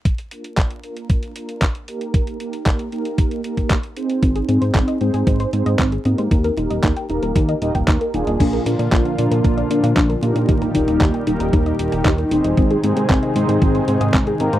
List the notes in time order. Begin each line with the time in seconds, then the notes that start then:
0.05 kick, closed hi-hat
0.18 closed hi-hat
0.31 A#3 D4 F4 A#4, closed hi-hat
0.44 closed hi-hat
0.57 kick, clap, closed hi-hat
0.70 closed hi-hat
0.83 A#3 D4 F4 A#4, closed hi-hat
0.97 closed hi-hat
1.10 kick, closed hi-hat
1.23 closed hi-hat
1.36 A#3 D4 F4 A#4, closed hi-hat
1.49 closed hi-hat
1.62 kick, clap, closed hi-hat
1.75 closed hi-hat
1.88 A#3 D#4 G4 A#4, closed hi-hat
2.01 closed hi-hat
2.14 kick, closed hi-hat
2.27 closed hi-hat
2.40 A#3 D#4 G4 A#4, closed hi-hat
2.53 closed hi-hat
2.66 kick, clap, closed hi-hat
2.79 closed hi-hat
2.92 A#3 D#4 G4 A#4, closed hi-hat
3.05 closed hi-hat
3.18 kick, closed hi-hat
3.31 closed hi-hat
3.44 A#3 D#4 G4 A#4, closed hi-hat
3.57 kick, closed hi-hat
3.70 kick, clap, closed hi-hat
3.83 closed hi-hat
3.97 C4 D#4 G#4 C5, closed hi-hat
4.10 closed hi-hat
4.23 G#1 C4, kick, closed hi-hat
4.36 G#4, closed hi-hat
4.48 G#2 C4 D#4 G#4 C5, closed hi-hat
4.61 G#2 C5, closed hi-hat
4.74 G#1 C4, kick, clap, closed hi-hat
4.88 D#5, closed hi-hat
5.01 G#2 C4 D#4 G#4 C5, closed hi-hat
5.14 G#2 G#4, closed hi-hat
5.27 G#1 C4, kick, closed hi-hat
5.40 C5, closed hi-hat
5.53 G#2 C4 D#4 G#4 C5, closed hi-hat
5.66 G#2 D#5, closed hi-hat
5.79 G#1 C4, kick, clap, closed hi-hat
5.92 G#4, closed hi-hat
6.05 G#2 A#3 C4 D#4 G4 A#4, closed hi-hat
6.18 G#2 C5, closed hi-hat
6.31 D#2 D#4, kick, closed hi-hat
6.44 A#4, closed hi-hat
6.57 D#1 A#3 D#4 G4 A#4, closed hi-hat
6.70 D#1 D#5, closed hi-hat
6.83 D#2 D#4, kick, clap, closed hi-hat
6.97 G5, closed hi-hat
7.10 D#1 A#3 D#4 G4 A#4, closed hi-hat
7.23 D#1 A#4, closed hi-hat
7.36 D#2 D#4, kick, closed hi-hat
7.49 D#5, closed hi-hat
7.62 D#1 A#3 D#4 G4 D#5, closed hi-hat
7.75 D#1 A#3 D#4 G4 A#4 G5, kick, closed hi-hat
7.88 D#2 D#4, kick, clap, closed hi-hat
8.01 A#4, closed hi-hat
8.14 D#1 A#3 D4 D#4 F4 G#4, closed hi-hat
8.27 D#1 D#5, closed hi-hat
8.40 A#1 A#2 D3 F3 D4 F4, kick, closed hi-hat, crash
8.53 A#4, closed hi-hat
8.66 A#2 A#3 D4 F4 A#4, closed hi-hat
8.79 A#2 D5, closed hi-hat
8.92 A#1 D4, kick, clap, closed hi-hat
9.05 F5, closed hi-hat
9.18 A#2 A#3 D4 F4 A#4, closed hi-hat
9.31 A#2 A#4, closed hi-hat
9.44 A#1 D4, kick, closed hi-hat
9.57 D5, closed hi-hat
9.70 A#2 A#3 D4 F4 A#4, closed hi-hat
9.83 A#2 F5, closed hi-hat
9.96 A#1 D4, kick, clap, closed hi-hat
10.09 A#4, closed hi-hat
10.22 A#2 A#3 D4 D#4 G4 A#4, closed hi-hat
10.35 A#2 D5, closed hi-hat
10.49 D#2 D#3 G3 D#4 G4, kick, closed hi-hat
10.62 A#4, closed hi-hat, high tom
10.75 D#1 A#3 D#4 G4 A#4, kick, closed hi-hat
10.88 D#1 D#5, closed hi-hat
11.01 D#2 D#4, kick, clap, closed hi-hat
11.14 G5, closed hi-hat
11.27 D#1 A#3 D#4 G4 A#4, closed hi-hat, high tom
11.40 D#1 A#4, closed hi-hat
11.53 D#2 D#4, kick, closed hi-hat
11.66 D#5, closed hi-hat
11.79 D#1 A#3 D#4 G4 A#4, closed hi-hat
11.92 D#1 G5, closed hi-hat
12.05 D#2 D#4, kick, clap, closed hi-hat
12.18 A#4, closed hi-hat
12.31 D#1 C4 D#4 G#4 C5, closed hi-hat
12.44 D#1 D#5, closed hi-hat
12.57 G#1 C3 G#3 C4 G#4, kick, closed hi-hat
12.71 G#4, closed hi-hat
12.84 G#2 C4 D#4 G#4 C5, closed hi-hat
12.96 G#2 C5, closed hi-hat
13.10 G#1 C4, kick, clap, closed hi-hat
13.23 D#5, closed hi-hat
13.36 G#2 C4 D#4 G#4 C5, closed hi-hat
13.49 G#2 G#4, closed hi-hat
13.62 G#1 C4, kick, closed hi-hat
13.75 C5, closed hi-hat
13.88 G#2 C4 D#4 G#4 C5, closed hi-hat
14.01 G#2 D#5, closed hi-hat
14.14 G#1 C4, kick, clap, closed hi-hat
14.27 G#4, closed hi-hat
14.40 G#2 A#3 C4 D#4 G4 A#4, closed hi-hat
14.53 G#2 C5, closed hi-hat